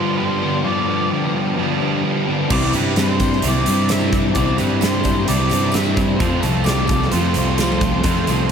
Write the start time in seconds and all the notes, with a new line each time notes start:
Already playing: G2 D3 F3 G3 B3 D4 F4 G4 C5 D5 F5
0.17 G2 D3 F3 G3 B3 D4 G4 C5
0.41 G2 D3 F3 G3 B3 D4 G4
0.63 G2 D3 F3 G3 B3 D4 G4 D5
0.68 F4
0.87 G2 D3 F3 B3 D4 G4
1.10 G2 D3 F3 G3 B3 D4 G4
1.33 G2 D3 F3 G3 B3 D4 G4
1.55 G2 D3 F3 B3 D4 G4
1.61 G3 F4
1.80 G2 D3 F3 B3 D4 G4
2.03 G2 D3 F3 G3 B3 D4 G4
2.26 G2 D3 F3 G3 B3 C4 D4 G4
2.50 C2 C3 E3 G3 C4 E4 D5 G5, kick, crash
2.62 tambourine
2.73 G2 C3 G3 C4 E4 B4, closed hi-hat, tambourine
2.96 C3 G3 C4 E4 G4 B4, snare, closed hi-hat, tambourine
3.09 C5, tambourine
3.20 C3 G3 C4 D4 E4, kick, closed hi-hat, tambourine
3.32 snare
3.42 C2 C3 E3 G3 C4 E4, closed hi-hat
3.48 D5
3.55 tambourine
3.66 G2 C3 G3 C4 E4, closed hi-hat, tambourine
3.89 C3 E3 G3 C4 E4 E5, snare, closed hi-hat, tambourine
4.01 tambourine
4.12 C3 G3 C4 D4 E4, kick, closed hi-hat
4.16 G3
4.33 C2 C3 E3 G3 C4 E4 D5, kick, closed hi-hat
4.38 C4 A5
4.47 tambourine
4.56 G2 C3 G3 C4 E4 B4, closed hi-hat, tambourine
4.70 tambourine
4.80 C3 G3 C4 E4 G4 C5, snare, closed hi-hat, tambourine
5.04 C3 G3 C4 D4 E4, kick, closed hi-hat, tambourine
5.09 G3
5.15 tambourine
5.25 C3 E3 G3 C4 E4 D5, closed hi-hat
5.29 C2 C3 G3 C4 E4
5.38 tambourine
5.49 G2 C3 G3 C4 E4, closed hi-hat, tambourine
5.61 tambourine
5.72 C3 G3 C4 E4 E5, snare, closed hi-hat, tambourine
5.77 G3 C4
5.83 tambourine
5.95 C3 G3 C4 D4 E4, kick, closed hi-hat
6.01 G3
6.17 F2 F3 A3 C4 F4 A4 C5 G5 C6, kick, closed hi-hat
6.21 F2 C3 F3 F4
6.31 tambourine
6.40 C2 F3 A3 C4 F4 A4, closed hi-hat, tambourine
6.53 tambourine
6.64 F2 F3 A3 C4 F4 G4 D5, snare, closed hi-hat, tambourine
6.69 C3
6.76 tambourine
6.87 C3 F3 A3 C4 F4, kick, closed hi-hat, tambourine
7.00 snare, tambourine
7.11 F2 C3 F3 A3 C4 F4 C5, closed hi-hat
7.23 tambourine
7.34 C2 F3 A3 C4 F4, closed hi-hat, tambourine
7.48 tambourine
7.58 F2 C3 F3 A3 C4 F4, snare, closed hi-hat, tambourine
7.72 tambourine
7.81 C3 F3 A3, kick, closed hi-hat
7.85 C4 F4
8.04 F2 C3 F3 A3 C4 F4, kick, closed hi-hat, tambourine
8.18 tambourine
8.27 C2 F3 A3 C4 F4, closed hi-hat, tambourine